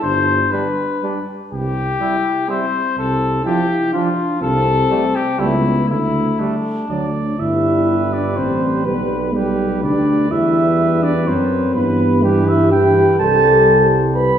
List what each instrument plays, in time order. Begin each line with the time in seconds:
0.02 tuba G1, french horn D4, cornet C5
0.51 trombone G3, trumpet D4, cornet B4
1.03 trombone G3, trumpet D4
1.52 tuba C2, cornet G4
2.00 trombone G3, french horn E4, trumpet E4
2.48 trombone G3, french horn C4, trumpet E4, cornet C5
2.98 tuba C2, cornet A4
3.45 trombone F3, trumpet D4, french horn E4, cornet G4
3.93 trombone F3, french horn D4, trumpet D4, cornet F4
4.41 tuba C2, french horn C4, cornet A4
4.89 trombone G3, trumpet A3
5.15 cornet G4
5.39 tuba C#2, trombone G3, trumpet A3, french horn B3, cornet E4
5.89 tuba D2, french horn A3, cornet E4
6.39 trombone G3, trumpet A3, cornet D4
6.89 tuba D2, trombone F#3, french horn D4, trumpet D5
7.38 tuba G1, trombone G3, french horn E4, cornet B4, trumpet E5
8.13 french horn D4, trumpet D5
8.37 tuba A1, french horn C4, trumpet C5
8.85 tuba B1, trombone G3, french horn B3, trumpet B4, cornet B4
9.34 trombone G3, french horn G3, trumpet G4, cornet B4
9.82 tuba D2, trombone G3, french horn D4, cornet B4, trumpet D5
10.31 tuba E2, trombone G3, french horn E4, cornet B4, trumpet E5
11.03 french horn D4, trumpet D5
11.27 tuba F#2, trombone F#3, french horn C4, trumpet C5
11.74 tuba G2, trombone E3, french horn B3, trumpet B4, cornet B4
12.23 trombone E3, french horn G3, trumpet G4, cornet B4
12.48 french horn E4, trumpet E5
12.71 trombone E3, french horn G4, cornet B4, trumpet G5
13.19 tuba C2, trombone G3, french horn A4, cornet C5, trumpet A5
14.16 french horn B4, trumpet B5